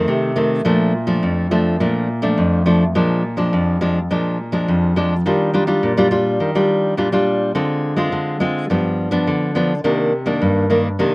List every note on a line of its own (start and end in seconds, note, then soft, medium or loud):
0.00 0.31 D#3 medium
0.00 0.31 A3 medium
0.00 0.32 C4 medium
0.08 0.62 C3 medium
0.36 0.60 D#3 medium
0.36 0.60 A3 medium
0.36 0.61 C4 medium
0.65 1.20 A#2 medium
0.65 0.92 F3 medium
0.65 0.92 A3 medium
0.65 0.92 D4 medium
1.07 1.46 F3 medium
1.07 1.46 A3 medium
1.07 1.46 D4 medium
1.23 1.77 F2 medium
1.51 1.75 F3 medium
1.51 1.76 A3 medium
1.51 1.76 D4 medium
1.80 2.35 A#2 medium
1.80 2.07 F3 soft
1.80 2.07 A3 medium
1.80 2.08 D4 medium
2.22 2.61 F3 medium
2.22 2.61 A3 medium
2.22 2.62 D4 medium
2.38 2.92 F2 medium
2.66 2.83 F3 medium
2.66 2.83 A3 medium
2.66 2.83 D4 medium
2.95 3.50 A#2 medium
2.95 3.22 F3 medium
2.95 3.22 G#3 medium
2.95 3.23 D4 medium
3.37 3.76 F3 medium
3.37 3.76 G#3 medium
3.37 3.77 D4 medium
3.53 4.07 F2 medium
3.81 3.98 F3 medium
3.81 3.98 G#3 medium
3.81 3.98 D4 medium
4.11 4.65 A#2 medium
4.11 4.37 F3 soft
4.11 4.37 G#3 soft
4.11 4.38 D4 medium
4.52 4.91 F3 medium
4.52 4.91 G#3 medium
4.52 4.92 D4 medium
4.68 5.23 F2 medium
4.96 5.13 F3 medium
4.96 5.13 G#3 medium
4.96 5.14 D4 medium
5.26 5.80 D#3 medium
5.26 5.50 G3 medium
5.26 5.50 D4 medium
5.26 5.50 F4 medium
5.54 5.62 G3 medium
5.54 5.63 D4 medium
5.54 5.63 F4 medium
5.67 5.92 G3 medium
5.67 5.92 D4 soft
5.67 5.92 F4 medium
5.83 6.37 A#2 medium
5.97 6.07 G3 medium
5.97 6.07 D4 medium
5.97 6.07 F4 medium
6.11 6.50 G3 medium
6.11 6.50 D4 medium
6.11 6.50 F4 medium
6.40 6.95 D#3 medium
6.55 6.93 G3 medium
6.55 6.93 D4 medium
6.55 6.94 F4 medium
6.97 7.52 A#2 medium
6.97 7.07 G3 medium
6.97 7.07 D4 medium
6.97 7.08 F4 medium
7.12 7.51 G3 medium
7.12 7.51 D4 medium
7.12 7.51 F4 medium
7.55 8.09 D3 medium
7.55 7.93 G#3 medium
7.55 7.93 C4 medium
7.55 7.94 F4 medium
7.96 8.36 G#3 medium
7.96 8.36 C4 medium
7.96 8.36 F4 medium
8.12 8.67 D3 medium
8.40 8.65 G#3 medium
8.40 8.65 C4 medium
8.40 8.65 F4 medium
8.70 9.24 G2 medium
8.70 9.08 F3 soft
8.70 9.08 B3 medium
8.70 9.09 D4 medium
9.11 9.50 F3 medium
9.11 9.51 B3 medium
9.11 9.51 D4 medium
9.27 9.82 D3 medium
9.55 9.72 F3 medium
9.55 9.72 B3 medium
9.55 9.73 D4 medium
9.84 10.39 C3 medium
9.84 10.11 D#3 medium
9.84 10.11 A#3 medium
9.84 10.11 D4 medium
10.26 10.65 D#3 medium
10.26 10.65 A#3 medium
10.26 10.66 D4 medium
10.41 10.96 G2 medium
10.70 10.87 D#3 medium
10.70 10.87 A#3 medium
10.70 10.87 D4 medium
10.99 11.15 C3 medium
10.99 11.15 D#3 medium
10.99 11.15 A#3 soft
10.99 11.15 D4 medium